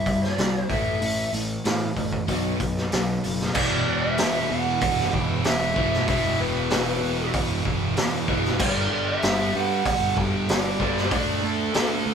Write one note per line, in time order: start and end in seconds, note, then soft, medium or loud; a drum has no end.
0.00 0.22 C2 medium
0.00 0.23 E5 medium
0.06 0.35 C3 medium
0.06 0.35 G3 medium
0.06 kick medium
0.06 open hi-hat soft
0.23 0.70 D5 medium
0.23 snare soft
0.38 0.62 C2 medium
0.38 0.67 C3 medium
0.38 0.67 G3 medium
0.38 snare loud
0.38 open hi-hat medium
0.69 0.94 A1 medium
0.69 1.00 A2 medium
0.69 1.00 E3 medium
0.69 1.00 A3 medium
0.69 1.30 E5 medium
0.69 kick loud
0.69 open hi-hat medium
1.01 1.25 A1 medium
1.01 1.30 A2 medium
1.01 1.30 E3 medium
1.01 open hi-hat medium
1.33 1.57 A1 medium
1.33 1.62 A2 medium
1.33 1.62 E3 medium
1.33 open hi-hat soft
1.64 1.93 A2 medium
1.64 1.89 A2 medium
1.64 1.94 E3 medium
1.64 snare loud
1.64 open hi-hat medium
1.96 2.20 A1 medium
1.96 2.25 A2 medium
1.96 2.26 E3 medium
1.96 kick medium
1.96 open hi-hat medium
2.13 kick medium
2.27 2.52 B1 medium
2.27 2.58 B2 medium
2.27 2.58 F#3 medium
2.27 2.58 B3 medium
2.27 kick medium
2.27 open hi-hat medium
2.60 2.84 B1 medium
2.60 2.89 B2 medium
2.60 2.89 F#3 medium
2.60 kick medium
2.60 open hi-hat medium
2.77 snare soft
2.92 3.16 B1 medium
2.92 3.21 B2 medium
2.92 3.21 F#3 medium
2.92 snare loud
2.92 open hi-hat medium
3.24 3.49 F#1 medium
3.24 3.52 B2 medium
3.24 3.53 F#3 medium
3.24 open hi-hat medium
3.41 snare soft
3.54 3.82 E1 medium
3.54 5.74 E2 loud
3.54 5.75 B2 medium
3.54 5.75 E3 loud
3.54 4.02 D5 medium
3.54 kick loud
3.54 crash loud
3.88 4.14 E1 medium
4.02 4.46 E5 medium
4.18 4.46 E1 loud
4.18 snare loud
4.18 open hi-hat medium
4.51 4.77 E2 medium
4.51 5.09 F#5 loud
4.81 5.09 E1 medium
4.81 kick loud
4.81 open hi-hat medium
4.98 snare soft
5.13 5.40 E1 medium
5.13 5.46 G5 loud
5.13 kick medium
5.44 5.72 E1 loud
5.44 6.07 E5 medium
5.44 snare loud
5.44 open hi-hat medium
5.76 6.03 E1 medium
5.76 6.07 E2 medium
5.76 6.07 B2 medium
5.76 6.06 E3 medium
5.76 kick medium
5.93 snare soft
6.08 6.35 E1 medium
6.08 8.26 E2 medium
6.08 8.27 B2 loud
6.08 8.26 E3 loud
6.08 6.41 E5 medium
6.08 kick loud
6.08 open hi-hat medium
6.40 6.66 E1 medium
6.40 7.30 B4 medium
6.70 6.98 E1 loud
6.70 snare loud
6.70 open hi-hat medium
7.03 7.30 E1 medium
7.34 7.61 E1 medium
7.34 kick loud
7.34 open hi-hat medium
7.65 7.92 E1 loud
7.65 kick medium
7.97 8.23 E2 medium
7.97 snare loud
7.97 open hi-hat medium
8.27 8.55 E1 medium
8.27 8.59 E2 medium
8.27 8.58 B2 medium
8.27 8.57 E3 medium
8.27 kick medium
8.45 snare soft
8.59 8.86 G1 loud
8.59 10.78 G2 loud
8.59 10.79 D3 loud
8.59 10.78 G3 loud
8.59 9.09 D5 medium
8.59 kick loud
8.59 crash loud
8.91 9.18 G1 medium
9.09 9.56 E5 medium
9.22 9.50 G1 loud
9.22 snare loud
9.22 open hi-hat medium
9.55 9.81 G2 medium
9.55 10.14 F#5 medium
9.85 10.12 G1 medium
9.85 kick loud
9.85 open hi-hat medium
10.17 10.44 G1 medium
10.17 10.51 G5 loud
10.17 kick medium
10.49 10.76 G1 loud
10.49 11.04 D5 medium
10.49 snare loud
10.49 open hi-hat medium
10.79 11.07 G1 medium
10.79 11.11 G2 medium
10.79 11.09 D3 medium
10.79 11.09 G3 medium
10.79 kick medium
10.97 snare soft
11.04 11.12 C5 medium
11.11 11.38 D2 medium
11.11 12.14 D3 medium
11.11 12.14 A3 loud
11.11 12.14 D4 loud
11.11 11.45 D5 loud
11.11 kick loud
11.11 open hi-hat medium
11.43 11.70 D2 medium
11.43 12.14 A4 medium
11.74 12.02 D2 loud
11.74 snare loud
11.74 open hi-hat medium
12.06 12.14 D2 medium